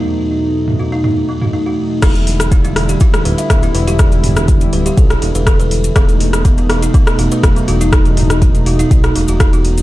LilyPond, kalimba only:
\new Staff \with { instrumentName = "Kalimba" } { \time 4/4 \key e \minor \tempo 4 = 122 r4. fis'16 dis'16 dis'16 r16 a16 fis'16 dis'16 fis'16 r8 | e'16 r8. e'16 e'16 d'16 g'16 e'16 r16 b'16 e''16 b16 e'16 b'16 g'16 | r4. b'16 g'16 a'16 r16 d'16 b'16 a'16 b'16 r8 | b16 r8. b16 b16 a16 dis'16 b16 r16 fis'16 b'16 fis16 b16 fis'16 dis'16 |
r4. fis'16 dis'16 dis'16 r16 a16 fis'16 dis'16 fis'16 r8 | }